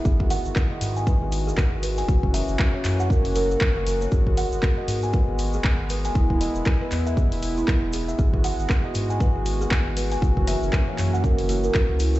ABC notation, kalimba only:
X:1
M:4/4
L:1/16
Q:"Swing 16ths" 1/4=118
K:G#m
V:1 name="Kalimba"
G G f z2 d z g B G z G z2 B g | F F e z2 c z f A F A A z F A c | G G f z2 d z g B G z G z2 B g | E E d z2 B z e G E z E z2 G e |
G G f z2 d z g B G z G z2 B g | F F e z2 c z f A F F A z2 E F |]